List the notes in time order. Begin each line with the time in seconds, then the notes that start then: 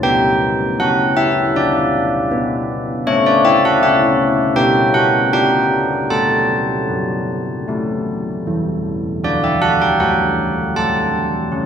0.03 B3 G4 G5
0.80 C#4 F#5
1.17 E5
1.56 D4 D5
2.31 B3
3.07 A3 A4 C#5
3.26 D5
3.45 E5
3.65 F#5
3.82 C#4 E5
4.56 B3 G4 G5
4.94 F#5
5.33 D4 G5
6.10 A3 F#4 A5
6.89 F#3
7.68 A3 E4
8.47 E3
9.24 D3 F#4 D5
9.44 E5
9.62 F#5
9.82 G5
10.00 F#3 F#5
10.76 A3 A5
11.52 C#4